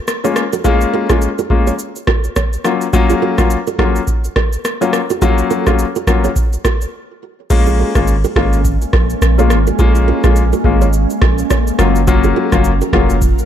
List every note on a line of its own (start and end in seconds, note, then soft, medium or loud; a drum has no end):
0.08 cross-stick medium
0.08 shaker medium
0.24 0.41 G#3 medium
0.24 0.41 A#3 medium
0.24 0.42 C#4 medium
0.24 0.42 F4 medium
0.24 0.32 A#4 medium
0.24 0.32 C#5 medium
0.24 shaker medium
0.36 cross-stick medium
0.36 shaker soft
0.53 0.61 F#4 medium
0.53 0.60 A#4 medium
0.53 shaker medium
0.64 1.06 G#3 medium
0.64 1.06 A#3 medium
0.64 1.06 C#4 medium
0.64 1.06 F4 loud
0.64 0.75 F4 medium
0.64 0.75 G#4 medium
0.64 kick loud
0.64 shaker medium
0.81 shaker medium
0.93 1.04 F#4 medium
0.93 1.03 A#4 medium
1.09 1.27 G#3 medium
1.09 1.27 A#3 medium
1.09 1.27 C#4 medium
1.09 1.27 F4 medium
1.09 1.18 F4 medium
1.09 1.17 G#4 medium
1.09 kick medium
1.09 cross-stick medium
1.09 shaker soft
1.22 shaker medium
1.39 1.46 F#4 medium
1.39 1.46 A#4 medium
1.39 shaker soft
1.50 1.71 G#3 medium
1.50 1.71 A#3 medium
1.50 1.71 C#4 medium
1.50 1.71 F4 medium
1.50 kick medium
1.67 1.75 A#4 medium
1.67 1.74 C#5 medium
1.67 shaker medium
1.79 shaker medium
1.96 shaker soft
2.07 2.18 F#4 medium
2.07 2.18 A#4 medium
2.07 kick medium
2.07 cross-stick medium
2.24 shaker soft
2.36 2.54 A#4 medium
2.36 2.53 C#5 medium
2.36 kick medium
2.36 cross-stick medium
2.36 shaker medium
2.53 shaker soft
2.65 2.85 F#3 medium
2.65 2.85 A#3 medium
2.65 2.85 C#4 medium
2.65 2.85 F4 medium
2.65 cross-stick medium
2.65 shaker soft
2.81 shaker medium
2.93 3.34 F#3 medium
2.93 3.34 A#3 medium
2.93 3.35 C#4 medium
2.93 3.35 F4 loud
2.93 kick loud
2.93 shaker medium
3.10 3.18 F4 medium
3.10 3.17 G#4 medium
3.10 shaker medium
3.22 3.33 F#4 medium
3.22 3.32 A#4 medium
3.38 3.56 F#3 medium
3.38 3.56 A#3 medium
3.38 3.56 C#4 medium
3.38 3.56 F4 medium
3.38 kick medium
3.38 cross-stick medium
3.38 shaker soft
3.50 shaker medium
3.67 3.75 F#4 medium
3.67 3.74 A#4 medium
3.67 shaker soft
3.79 3.99 F#3 medium
3.79 3.99 A#3 medium
3.79 3.99 C#4 medium
3.79 4.00 F4 medium
3.79 3.90 F4 medium
3.79 3.89 G#4 medium
3.79 kick medium
3.79 cross-stick medium
3.96 shaker medium
4.07 kick medium
4.07 shaker medium
4.24 shaker soft
4.36 4.47 F#4 medium
4.36 4.46 A#4 medium
4.36 kick medium
4.36 cross-stick medium
4.53 shaker soft
4.65 cross-stick medium
4.65 shaker medium
4.81 4.98 F#3 medium
4.81 4.99 A#3 medium
4.81 4.99 C#4 medium
4.81 4.99 F4 medium
4.81 4.89 A#4 medium
4.81 4.89 C#5 medium
4.81 shaker medium
4.93 cross-stick medium
4.93 shaker soft
5.10 5.18 F#4 medium
5.10 5.17 A#4 medium
5.10 shaker medium
5.22 5.63 F#3 medium
5.22 5.63 A#3 medium
5.22 5.63 C#4 medium
5.22 5.63 F4 loud
5.22 5.33 F4 medium
5.22 5.32 G#4 medium
5.22 kick loud
5.22 shaker medium
5.38 shaker medium
5.50 5.61 F#4 medium
5.50 5.61 A#4 medium
5.50 shaker medium
5.67 5.84 F#3 medium
5.67 5.84 A#3 medium
5.67 5.84 C#4 medium
5.67 5.85 F4 medium
5.67 5.75 F4 medium
5.67 5.74 G#4 medium
5.67 kick medium
5.67 cross-stick medium
5.67 shaker soft
5.79 shaker medium
5.96 6.04 F#4 medium
5.96 6.03 A#4 medium
5.96 shaker soft
6.07 6.28 F#3 medium
6.07 6.28 A#3 medium
6.07 6.28 C#4 medium
6.07 6.28 F4 medium
6.07 kick medium
6.07 cross-stick medium
6.07 shaker medium
6.24 6.32 A#4 medium
6.24 6.32 C#5 medium
6.24 shaker medium
6.36 kick medium
6.36 shaker medium
6.53 shaker soft
6.65 6.75 F#4 medium
6.65 6.75 A#4 medium
6.65 kick medium
6.65 cross-stick medium
6.65 shaker soft
6.81 shaker soft
7.50 7.83 A#1 loud
7.50 7.91 G#3 loud
7.50 11.75 G#3 medium
7.50 7.92 A#3 medium
7.50 11.75 A#3 medium
7.50 11.75 C#4 medium
7.50 7.92 C#4 medium
7.50 7.92 F4 loud
7.50 kick loud
7.50 crash medium
7.50 shaker medium
7.67 7.75 F4 medium
7.67 7.74 G#4 medium
7.67 shaker medium
7.79 7.90 F#4 medium
7.79 7.89 A#4 medium
7.95 8.25 G#1 medium
7.95 8.13 G#3 medium
7.95 8.13 A#3 medium
7.95 8.13 C#4 medium
7.95 8.13 F4 medium
7.95 kick medium
7.95 cross-stick medium
7.95 shaker soft
8.07 shaker medium
8.24 8.32 F#4 medium
8.24 8.32 A#4 medium
8.24 shaker soft
8.36 8.78 G#1 medium
8.36 8.56 G#3 medium
8.36 8.56 A#3 medium
8.36 8.57 C#4 medium
8.36 8.57 F4 medium
8.36 8.47 F4 medium
8.36 8.46 G#4 medium
8.36 kick medium
8.36 cross-stick loud
8.53 shaker medium
8.65 kick medium
8.65 shaker medium
8.82 shaker soft
8.93 9.14 A#1 medium
8.93 9.04 F#4 medium
8.93 9.03 A#4 medium
8.93 kick medium
8.93 cross-stick medium
9.10 shaker soft
9.22 9.52 A#1 loud
9.22 cross-stick medium
9.22 shaker medium
9.38 9.56 G#3 medium
9.38 9.56 A#3 medium
9.38 9.56 C#4 medium
9.38 9.56 F4 medium
9.38 9.46 A#4 medium
9.38 9.46 C#5 medium
9.38 shaker medium
9.50 9.71 G#1 medium
9.50 cross-stick medium
9.50 shaker medium
9.67 9.75 F#4 medium
9.67 9.75 A#4 medium
9.67 shaker medium
9.79 10.12 A#1 loud
9.79 10.20 G#3 medium
9.79 10.20 A#3 medium
9.79 10.20 C#4 medium
9.79 10.20 F4 loud
9.79 9.90 F4 medium
9.79 9.89 G#4 medium
9.79 kick loud
9.79 shaker medium
9.95 shaker medium
10.08 10.18 F#4 medium
10.08 10.18 A#4 medium
10.24 10.54 A#1 medium
10.24 10.41 G#3 medium
10.24 10.41 A#3 medium
10.24 10.41 C#4 medium
10.24 10.42 F4 medium
10.24 10.32 F4 medium
10.24 10.32 G#4 medium
10.24 kick medium
10.24 cross-stick medium
10.24 shaker soft
10.36 shaker medium
10.53 10.61 F#4 medium
10.53 10.60 A#4 medium
10.53 shaker soft
10.64 11.06 G#1 medium
10.64 10.85 G#3 medium
10.64 10.85 A#3 medium
10.64 10.85 C#4 medium
10.64 10.85 F4 medium
10.64 kick loud
10.81 10.89 A#4 medium
10.81 10.89 C#5 medium
10.81 shaker medium
10.93 shaker medium
11.10 shaker soft
11.22 11.43 A#1 medium
11.22 11.33 F#4 medium
11.22 11.32 A#4 medium
11.22 kick medium
11.22 cross-stick loud
11.38 shaker medium
11.50 11.68 A#4 medium
11.50 11.68 C#5 medium
11.50 kick medium
11.50 cross-stick medium
11.50 shaker medium
11.67 shaker medium
11.79 12.33 F#1 loud
11.79 11.99 F#3 medium
11.79 13.45 F#3 medium
11.79 11.99 A#3 medium
11.79 11.99 C#4 medium
11.79 13.45 F4 medium
11.79 12.00 F4 medium
11.79 13.45 A#4 medium
11.79 cross-stick medium
11.79 shaker medium
11.96 shaker medium
12.07 12.49 F#3 medium
12.07 12.49 A#3 medium
12.07 12.49 C#4 medium
12.07 12.49 F4 loud
12.07 kick loud
12.07 shaker medium
12.24 12.32 F4 medium
12.24 12.32 G#4 medium
12.24 shaker medium
12.36 12.47 F#4 medium
12.36 12.46 A#4 medium
12.52 12.82 F#1 medium
12.52 12.70 F#3 medium
12.52 12.70 A#3 medium
12.52 12.70 C#4 medium
12.52 12.70 F4 medium
12.52 kick loud
12.52 cross-stick medium
12.52 shaker soft
12.64 shaker medium
12.81 12.89 F#4 medium
12.81 12.89 A#4 medium
12.81 shaker soft
12.93 13.35 F1 loud
12.93 13.14 F#3 medium
12.93 13.14 A#3 medium
12.93 13.14 C#4 medium
12.93 13.14 F4 medium
12.93 13.04 F4 medium
12.93 13.03 G#4 medium
12.93 kick loud
12.93 cross-stick medium
13.10 shaker medium
13.22 kick medium
13.22 shaker medium
13.38 shaker soft